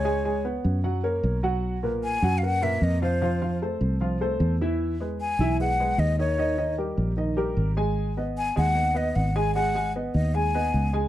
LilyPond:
<<
  \new Staff \with { instrumentName = "Flute" } { \time 4/4 \key gis \minor \tempo 4 = 152 cis''4 r2. | r4 gis''8.~ gis''32 eis''32 fis''8 e''8 dis''8 bis'8~ | bis'4 r2. | r4 gis''4 fis''4 dis''8 cis''8~ |
cis''4 r2. | r4 gis''8 fis''4 dis''8 fis''8 gis''8 | fis''4 r8 dis''8 gis''4. r8 | }
  \new Staff \with { instrumentName = "Upright piano" } { \time 4/4 \key gis \minor <gis gis' gis''>8 <gis gis' gis''>8 <b b' cis''>4 <fis fis' fis''>8 <ais ais' cis''>4 <fis fis' fis''>8~ | <fis fis' fis''>8 <ais, ais' b'>4 <fis fis' fis''>8 <ais ais' b'>8 <ais, ais' b'>4 <eis eis' eis''>8 | <f f' f''>8 <f f' f''>8 <a a' c''>4 <f f' f''>8 <a a' c''>4 <e e' e''>8~ | <e e' e''>8 <gis gis' b'>4 <e e' e''>8 <gis gis' b'>8 <gis gis' b'>4 <dis dis' dis''>8 |
<dis dis' dis''>8 <dis dis' dis''>8 <g g' ais'>4 <dis dis' dis''>8 <g g' ais'>4 <gis gis' gis''>8~ | <gis gis' gis''>8 <b b' dis''>4 <gis gis' gis''>8 <b b' dis''>8 <b b' dis''>4 <gis gis' gis''>8 | <gis gis' gis''>8 <gis gis' gis''>8 <b b' dis''>4 <gis gis' gis''>8 <b b' dis''>4 <gis gis' gis''>8 | }
  \new Staff \with { instrumentName = "Fingered electric bass" } { \clef bass \time 4/4 \key gis \minor cis,4. fis,4. b,,4~ | b,,4. fis,4. eis,4~ | eis,4. c,4. e,4~ | e,4. b,,4. dis,4~ |
dis,4. ais,,4. gis,,4~ | gis,,4. dis,4. gis,,4~ | gis,,4. dis,4. cis,4 | }
>>